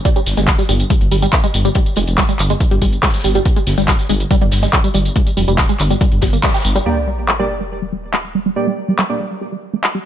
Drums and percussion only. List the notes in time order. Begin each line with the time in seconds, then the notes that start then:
0.05 kick, closed hi-hat, tambourine
0.16 closed hi-hat, tambourine
0.26 snare, closed hi-hat, open hi-hat, tambourine
0.37 snare, closed hi-hat, tambourine
0.47 kick, snare, clap, closed hi-hat, tambourine
0.59 snare, closed hi-hat, tambourine
0.69 closed hi-hat, open hi-hat, tambourine
0.80 closed hi-hat, tambourine
0.90 kick, closed hi-hat, tambourine
1.01 closed hi-hat
1.11 closed hi-hat, open hi-hat, tambourine
1.22 closed hi-hat, tambourine
1.32 kick, snare, clap, closed hi-hat, tambourine
1.44 closed hi-hat, tambourine
1.54 closed hi-hat, open hi-hat, tambourine
1.65 closed hi-hat, tambourine
1.75 kick, closed hi-hat, tambourine
1.86 closed hi-hat, tambourine
1.96 closed hi-hat, open hi-hat, tambourine
2.07 closed hi-hat, tambourine
2.18 kick, snare, clap, closed hi-hat, tambourine
2.29 closed hi-hat, tambourine
2.39 clap, closed hi-hat, open hi-hat, tambourine
2.50 closed hi-hat, tambourine
2.60 kick, closed hi-hat, tambourine
2.71 closed hi-hat
2.82 kick, closed hi-hat, open hi-hat, tambourine
2.93 closed hi-hat, tambourine
3.02 kick, snare, clap, closed hi-hat, tambourine
3.08 snare, closed hi-hat
3.13 snare, closed hi-hat, tambourine
3.19 snare, closed hi-hat
3.24 closed hi-hat, open hi-hat, tambourine
3.35 closed hi-hat, tambourine
3.45 kick, closed hi-hat, tambourine
3.56 closed hi-hat, tambourine
3.67 snare, closed hi-hat, open hi-hat, tambourine
3.78 snare, closed hi-hat, tambourine
3.88 kick, snare, clap, closed hi-hat, tambourine
3.99 snare, closed hi-hat, tambourine
4.09 closed hi-hat, open hi-hat, tambourine
4.20 closed hi-hat, tambourine
4.31 kick, closed hi-hat, tambourine
4.41 closed hi-hat
4.52 snare, closed hi-hat, open hi-hat, tambourine
4.63 snare, closed hi-hat, tambourine
4.73 kick, clap, closed hi-hat, tambourine
4.84 closed hi-hat, tambourine
4.94 closed hi-hat, open hi-hat, tambourine
5.05 closed hi-hat, tambourine
5.16 kick, closed hi-hat, tambourine
5.27 closed hi-hat, tambourine
5.37 closed hi-hat, open hi-hat, tambourine
5.48 closed hi-hat, tambourine
5.58 kick, snare, clap, closed hi-hat, tambourine
5.69 closed hi-hat, tambourine
5.79 clap, closed hi-hat, open hi-hat, tambourine
5.91 closed hi-hat, tambourine
6.01 kick, closed hi-hat, tambourine
6.12 closed hi-hat
6.22 kick, snare, closed hi-hat, open hi-hat, tambourine
6.33 closed hi-hat, tambourine
6.43 kick, snare, clap, closed hi-hat, tambourine
6.48 snare, closed hi-hat
6.54 snare, closed hi-hat, tambourine
6.60 snare, closed hi-hat
6.65 open hi-hat, tambourine
6.76 closed hi-hat, tambourine
7.29 clap
8.14 clap
8.99 clap
9.84 clap